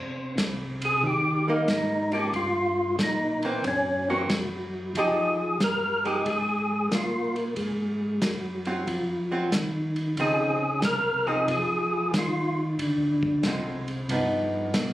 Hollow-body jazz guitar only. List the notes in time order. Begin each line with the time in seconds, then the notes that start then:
1.48 G3 A#3 D#4
2.13 F3 A#3 C#4
3.45 E3 A#3 C4
4.10 E3 A#3 C4
4.97 F3 G#3 D#4 G4
6.05 F3 G#3 D#4 G4
8.67 F#3 C4 F4
9.32 F#3 C4 F4
10.20 F3 C4 D#4
11.27 F3 C4 D#4
13.46 D3 G#3 C4 F4
14.11 F3 B3 D#4